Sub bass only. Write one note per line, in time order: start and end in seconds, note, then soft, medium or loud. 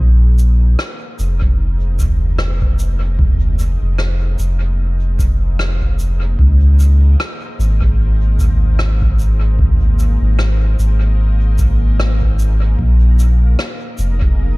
0.00 0.76 A#1 medium
1.19 3.77 F1 medium
3.82 4.36 F1 medium
4.39 6.36 F1 medium
6.39 7.16 C#2 medium
7.59 10.17 G#1 medium
10.21 10.76 G#1 medium
10.79 12.76 G#1 medium
12.79 13.56 A#1 medium
13.98 14.57 F1 medium